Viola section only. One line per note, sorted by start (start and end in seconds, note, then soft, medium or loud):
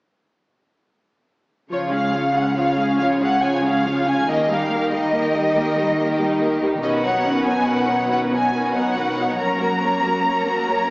1.70 1.91 F3 soft
1.70 1.91 F4 soft
1.91 2.14 G#3 soft
1.91 2.14 C#4 soft
2.14 2.36 F3 soft
2.14 2.36 F4 soft
2.35 2.57 G#3 soft
2.35 2.57 C#4 soft
2.56 2.77 F3 soft
2.56 2.76 F4 soft
2.77 2.99 G#3 soft
2.77 2.99 C#4 soft
2.99 3.21 F3 soft
2.99 3.21 F4 soft
3.20 3.42 G#3 soft
3.20 3.42 C#4 soft
3.42 3.63 F3 soft
3.42 3.62 F4 soft
3.63 3.85 G#3 soft
3.63 3.86 C#4 soft
3.84 4.07 F3 soft
3.84 4.07 F4 soft
4.06 4.28 G#3 soft
4.06 4.28 C#4 soft
4.27 4.48 A#3 soft
4.51 4.72 G3 soft
4.71 4.92 A#3 soft
4.91 5.13 G3 soft
5.13 5.33 A#3 soft
5.35 5.57 G3 soft
5.56 5.77 A#3 soft
5.77 5.98 G3 soft
5.97 6.18 A#3 soft
6.18 6.40 G3 soft
6.40 6.62 A#3 soft
6.61 6.83 G3 soft
6.83 7.03 D#3 soft
6.83 7.03 C#4 soft
7.05 7.26 F#3 soft
7.05 7.26 B3 soft
7.26 7.47 D#3 soft
7.26 7.47 C#4 soft
7.47 7.69 F#3 soft
7.47 7.68 B3 soft
7.68 7.88 D#3 soft
7.68 7.88 C#4 soft
7.88 8.10 F#3 soft
7.88 8.10 B3 soft
8.11 8.32 D#3 soft
8.11 8.32 C#4 soft
8.32 8.54 F#3 soft
8.32 8.54 B3 soft
8.55 8.74 D#3 soft
8.55 8.74 C#4 soft
8.76 8.97 F#3 soft
8.76 8.97 B3 soft
8.97 9.18 D#3 soft
8.97 9.18 C#4 soft
9.18 9.40 F#3 soft
9.18 9.40 B3 soft
9.40 9.59 A#3 soft
9.40 9.60 C#4 soft
9.60 9.83 F#3 soft
9.60 9.82 A#3 soft
9.83 10.03 A#3 soft
9.83 10.05 C#4 soft
10.04 10.27 F#3 soft
10.04 10.23 A#3 soft
10.25 10.45 A#3 soft
10.25 10.46 C#4 soft
10.46 10.69 F#3 soft
10.46 10.67 A#3 soft
10.68 10.87 A#3 soft
10.68 10.90 C#4 soft